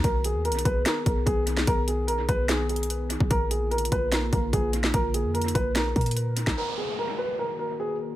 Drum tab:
HH |x-----------x-----------x---x---x---x-----------x-----------x-----------x-----------x-----------|x-----------x-----------x-----------x-----------x-----------x---x---x---x-----------x-----------|x-----------x-----------x---x---x---x-----------x-----------x-----------x-----------x-----------|x-----------x-----------x---x---x---x-----------x-----------x--x--x--x--x-----------x-----------|
CP |------------------------------------------------x-----------------------------------------x-----|------------------------------------------------x-----------------------------------------------|------------------------------------------------x-----------------------------------------x-----|------------------------------------------------x-----------------------------------------x-----|
SD |------------------------------------------------o-----------------------------------------o-----|------------------------------------------------o-----------------------------------------------|------------------------------------------------o-----------------------------------------o-----|------------------------------------------------o-----------------------------------------o-----|
BD |o-----------------------------------o-----------------------o-----------o-----------------------|o-----------------------------------o-----------------------------------------------------o-----|o-----------------------------------o-----------------------o-----------o-----------------------|o-----------------------------------o-----------------------o-----------------------------o-----|

HH |------------------------------------------------------------------------------------------------|
CP |------------------------------------------------------------------------------------------------|
SD |------------------------------------------------------------------------------------------------|
BD |------------------------------------------------------------------------------------------------|